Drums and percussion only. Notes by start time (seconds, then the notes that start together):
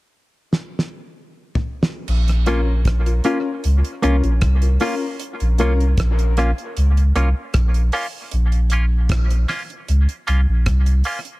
0.53 snare
0.79 snare
1.55 floor tom
1.83 snare
2.08 crash
2.28 cross-stick, closed hi-hat
2.46 closed hi-hat
2.85 kick, cross-stick, closed hi-hat
3.06 closed hi-hat
3.24 closed hi-hat
3.64 closed hi-hat
3.85 closed hi-hat
4.03 closed hi-hat
4.24 closed hi-hat
4.41 kick, cross-stick, closed hi-hat
4.62 closed hi-hat
4.80 open hi-hat
5.20 closed hi-hat
5.40 closed hi-hat
5.59 closed hi-hat
5.80 closed hi-hat
5.97 kick, cross-stick, closed hi-hat
6.19 closed hi-hat
6.37 cross-stick, closed hi-hat
6.58 closed hi-hat
6.77 closed hi-hat
6.97 closed hi-hat
7.16 closed hi-hat
7.54 kick, cross-stick, closed hi-hat
7.74 closed hi-hat
7.92 open hi-hat
8.31 closed hi-hat
8.52 closed hi-hat
8.70 closed hi-hat
9.09 kick, cross-stick, closed hi-hat
9.30 closed hi-hat
9.48 cross-stick, open hi-hat
9.70 closed hi-hat
9.88 closed hi-hat
10.09 closed hi-hat
10.28 closed hi-hat
10.66 kick, cross-stick, closed hi-hat
10.86 closed hi-hat
11.04 open hi-hat
11.25 closed hi-hat